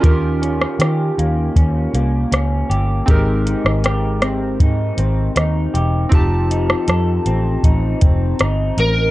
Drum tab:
HH |x-x-x-x-x-x-x-x-|x-x-x-x-x-x-x-x-|x-x-x-x-x-x-x-x-|
SD |---rr-------r---|---rr-r-----r---|---rr-------r---|
BD |o-------o-------|o-------o-------|o-------o-o-----|